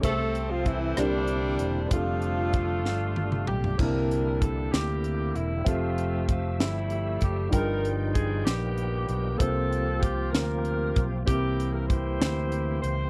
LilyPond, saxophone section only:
\new Staff \with { instrumentName = "Saxophone section" } { \time 6/8 \key c \mixolydian \tempo 4. = 64 << { a'8. f'16 e'8 d'4. | f'2~ f'8 g'8 | bes'4 a'8 g'4 e'8 | f'4 f'8 e'4 g'8 |
ais'8 r8 aes'8 g'4 g'8 | a'4 g'8 bes'4 r8 | g'8. bes'16 c''4. c''8 | } \\ { c'4. <g bes>4. | <a d'>2~ <a d'>8 r8 | <d' e'>4. <bes e'>4. | <a c'>4. <g a>4. |
<dis' f'>4. <ais b>4. | f'4. <f' g'>4. | <bes e'>4 <e' g'>4. r8 | } >> }